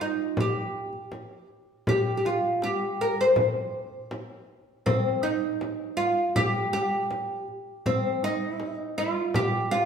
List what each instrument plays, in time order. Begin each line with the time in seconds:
0.01 oud D#4
0.37 oud G4, frame drum
0.93 frame drum
1.12 frame drum
1.87 oud G4, frame drum
2.17 oud G4
2.25 oud F4, frame drum
2.43 frame drum
2.62 oud G4, frame drum
2.99 oud A#4, frame drum
3.21 oud C5
3.36 frame drum
4.11 frame drum
4.86 oud C4, frame drum
5.23 oud D#4, frame drum
5.61 frame drum
5.97 oud F4, frame drum
6.36 oud G4, frame drum
6.73 oud G4, frame drum
7.11 frame drum
7.48 frame drum
7.86 oud C4, frame drum
8.23 oud D#4, frame drum
8.60 frame drum
8.98 oud F4, frame drum
9.34 oud G4, frame drum
9.71 oud F4, frame drum